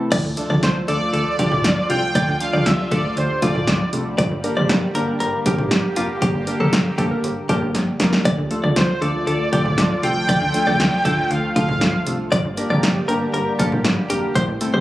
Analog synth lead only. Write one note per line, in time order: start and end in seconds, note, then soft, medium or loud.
0.63 0.74 C5 medium
0.88 1.86 D5 loud
1.91 2.37 G5 loud
2.41 2.68 F5 loud
2.67 2.92 E5 loud
2.92 3.19 D5 loud
3.18 3.43 C5 medium
3.43 3.90 D5 medium
8.76 9.03 C5 medium
9.02 10.03 D5 loud
10.04 11.32 G5 loud
11.31 11.56 F5 loud
11.56 12.03 F5 loud